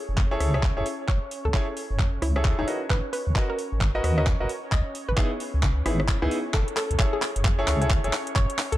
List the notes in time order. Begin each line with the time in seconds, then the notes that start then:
Already playing: C#4 C#5
0.09 F#1
0.18 kick, clap
0.31 E4 G#4 A4 C#5
0.40 C#2, cross-stick, open hi-hat
0.54 E4 G#4 A4 C#5, cross-stick
0.63 kick, clap
0.77 F#1 E4 G#4 A4 C#5
0.86 open hi-hat
1.09 F#1 C#5, kick, clap
1.31 open hi-hat
1.45 C#2 A4
1.54 E4 G#4 A4 C#5, kick, clap
1.77 open hi-hat
1.91 F#1
1.99 kick, clap
2.22 C#2 E4, cross-stick, open hi-hat
2.36 E4 G#4 A4 C#5, cross-stick
2.45 kick, clap
2.59 F#1 D#4 E4 G#4 A4 C#5
2.67 F#4 A#4 B4 D#5, open hi-hat
2.90 G#1 B4, kick, clap
3.13 B4, open hi-hat
3.27 D#2
3.36 F#4 A#4 B4 D#5, kick, clap
3.50 A#4
3.59 open hi-hat
3.72 G#1
3.81 kick, clap
3.95 F#4 A#4 B4 D#5
4.04 D#2, cross-stick, open hi-hat
4.18 F#4 A#4 B4 D#5, cross-stick
4.27 kick, clap
4.40 G#1 F#4 A#4 B4 D#5
4.49 open hi-hat
4.72 C#2 D#5, kick, clap
4.95 open hi-hat
5.09 G#1 B4
5.18 B3 D#4 E4 G#4, kick, clap
5.40 open hi-hat
5.54 C#2
5.63 kick, clap
5.86 G#1 B3 D#4 E4 G#4, cross-stick, open hi-hat
6.00 cross-stick
6.09 kick, clap
6.22 C#2 B3 D#4 E4 G#4
6.31 open hi-hat
6.54 F#1 C#4 A4 C#5, kick, clap
6.68 closed hi-hat
6.77 A4, clap, open hi-hat
6.91 C#2, closed hi-hat
6.99 E4 G#4 A4 C#5, kick, clap
7.13 G#4
7.22 clap, open hi-hat
7.36 F#1, closed hi-hat
7.45 kick, clap
7.59 E4 G#4 A4 C#5
7.68 C#2, clap, open hi-hat
7.81 E4 G#4 A4 C#5, closed hi-hat
7.90 kick, clap
8.04 F#1 E4 G#4 A4 C#5, closed hi-hat
8.13 clap, open hi-hat
8.27 closed hi-hat
8.36 F#1 C#5, kick, clap
8.50 closed hi-hat
8.59 clap, open hi-hat
8.72 C#2 A4, closed hi-hat